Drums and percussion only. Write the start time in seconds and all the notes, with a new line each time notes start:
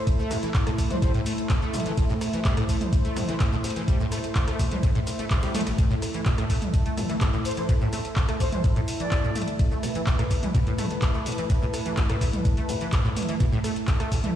0.07 kick, closed hi-hat, ride, cabasa
0.19 snare, cabasa
0.31 cross-stick, snare, open hi-hat, ride, cabasa
0.43 closed hi-hat, cabasa
0.54 kick, snare, clap, ride, cabasa
0.67 cross-stick, closed hi-hat, cabasa
0.78 kick, open hi-hat, ride, cabasa
0.91 closed hi-hat, mid tom, cabasa
1.02 kick, closed hi-hat, ride, cabasa
1.14 closed hi-hat, cabasa
1.26 open hi-hat, ride, cabasa
1.38 closed hi-hat, cabasa
1.49 kick, snare, clap, closed hi-hat, ride, cabasa
1.62 snare, cabasa
1.74 mid tom, open hi-hat, ride, cabasa
1.80 closed hi-hat
1.86 closed hi-hat, cabasa
1.97 kick, closed hi-hat, ride, cabasa
2.10 snare, cabasa
2.21 cross-stick, snare, open hi-hat, ride, cabasa
2.33 closed hi-hat, cabasa
2.45 kick, snare, clap, ride, cabasa
2.57 cross-stick, closed hi-hat, cabasa
2.69 kick, open hi-hat, ride, cabasa
2.81 closed hi-hat, mid tom, cabasa
2.93 kick, closed hi-hat, ride, cabasa
3.05 closed hi-hat, cabasa
3.17 cross-stick, mid tom, open hi-hat, ride, cabasa
3.29 snare, closed hi-hat, cabasa
3.40 kick, snare, clap, closed hi-hat, ride, cabasa
3.52 snare, cabasa
3.64 snare, open hi-hat, ride, cabasa
3.70 closed hi-hat
3.76 closed hi-hat, cabasa
3.88 kick, closed hi-hat, ride, cabasa
4.00 cabasa
4.12 cross-stick, open hi-hat, ride, cabasa
4.24 closed hi-hat, cabasa
4.35 kick, snare, clap, ride, cabasa
4.48 cross-stick, closed hi-hat, cabasa
4.59 kick, open hi-hat, ride, cabasa
4.71 closed hi-hat, mid tom, cabasa
4.83 kick, closed hi-hat, ride, cabasa
4.95 closed hi-hat, cabasa
5.07 snare, open hi-hat, ride, cabasa
5.19 closed hi-hat, cabasa
5.30 kick, clap, closed hi-hat, ride, cabasa
5.43 snare, ride, cabasa
5.55 snare, mid tom, open hi-hat, ride, cabasa
5.61 closed hi-hat
5.67 snare, closed hi-hat, ride, cabasa
5.78 kick, closed hi-hat, ride, cabasa
5.91 snare, cabasa
6.02 cross-stick, snare, open hi-hat, ride, cabasa
6.14 closed hi-hat, cabasa
6.25 kick, snare, clap, ride, cabasa
6.38 cross-stick, closed hi-hat, cabasa
6.50 kick, open hi-hat, ride, cabasa
6.62 closed hi-hat, mid tom, cabasa
6.74 kick, closed hi-hat, ride, cabasa
6.86 closed hi-hat, cabasa
6.97 cross-stick, mid tom, open hi-hat, ride, cabasa
7.10 snare, closed hi-hat, cabasa
7.21 kick, snare, clap, closed hi-hat, ride, cabasa
7.33 snare, cabasa
7.45 open hi-hat, cabasa
7.51 closed hi-hat
7.57 closed hi-hat, cabasa
7.69 kick, closed hi-hat, ride, cabasa
7.81 snare, cabasa
7.93 cross-stick, snare, open hi-hat, ride, cabasa
8.05 closed hi-hat, cabasa
8.16 kick, snare, clap, ride, cabasa
8.29 cross-stick, closed hi-hat, cabasa
8.40 kick, open hi-hat, ride, cabasa
8.52 closed hi-hat, mid tom, cabasa
8.64 kick, closed hi-hat, ride, cabasa
8.76 closed hi-hat, cabasa
8.88 open hi-hat, ride, cabasa
9.00 closed hi-hat, cabasa
9.11 kick, snare, clap, closed hi-hat, ride, cabasa
9.24 snare, cabasa
9.36 mid tom, open hi-hat, ride, cabasa
9.42 closed hi-hat
9.48 closed hi-hat, cabasa
9.59 kick, closed hi-hat, ride, cabasa
9.71 snare, cabasa
9.83 cross-stick, snare, open hi-hat, ride, cabasa
9.95 closed hi-hat, cabasa
10.06 kick, snare, clap, ride, cabasa
10.19 cross-stick, closed hi-hat, cabasa
10.31 kick, open hi-hat, ride, cabasa
10.43 closed hi-hat, mid tom, cabasa
10.55 kick, closed hi-hat, ride, cabasa
10.67 closed hi-hat, cabasa
10.78 cross-stick, mid tom, open hi-hat, ride, cabasa
10.91 snare, closed hi-hat, cabasa
11.02 kick, snare, clap, closed hi-hat, ride, cabasa
11.14 snare, cabasa
11.26 open hi-hat, cabasa
11.32 closed hi-hat
11.38 closed hi-hat, cabasa
11.50 kick, closed hi-hat, ride, cabasa
11.62 snare, cabasa
11.74 cross-stick, snare, open hi-hat, ride, cabasa
11.86 closed hi-hat, cabasa
11.97 kick, snare, clap, ride, cabasa
12.10 cross-stick, closed hi-hat, cabasa
12.21 kick, open hi-hat, ride, cabasa
12.33 closed hi-hat, mid tom, cabasa
12.45 kick, closed hi-hat, ride, cabasa
12.57 closed hi-hat, cabasa
12.69 open hi-hat, ride, cabasa
12.81 closed hi-hat, cabasa
12.92 kick, snare, clap, closed hi-hat, ride, cabasa
13.05 snare, cabasa
13.17 mid tom, open hi-hat, ride, cabasa
13.23 closed hi-hat
13.29 closed hi-hat, cabasa
13.40 kick, closed hi-hat, ride, cabasa
13.52 snare, cabasa
13.64 cross-stick, snare, open hi-hat, ride, cabasa
13.76 closed hi-hat, cabasa
13.87 kick, snare, clap, ride, cabasa
14.00 cross-stick, closed hi-hat, cabasa
14.12 kick, open hi-hat, ride, cabasa
14.24 closed hi-hat, mid tom, cabasa